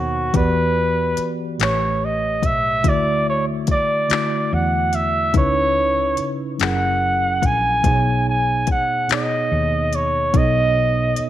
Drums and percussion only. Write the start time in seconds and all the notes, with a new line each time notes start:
0.34 kick, closed hi-hat
1.17 closed hi-hat
1.60 clap, closed hi-hat
2.43 kick, closed hi-hat
2.84 kick, closed hi-hat
3.67 kick, closed hi-hat
4.10 clap, closed hi-hat
4.93 closed hi-hat
5.34 kick, closed hi-hat
6.17 closed hi-hat
6.60 clap, closed hi-hat
7.42 kick, closed hi-hat
7.84 kick, closed hi-hat
8.67 kick, closed hi-hat
9.09 clap, closed hi-hat
9.93 closed hi-hat
10.34 kick, closed hi-hat
11.16 closed hi-hat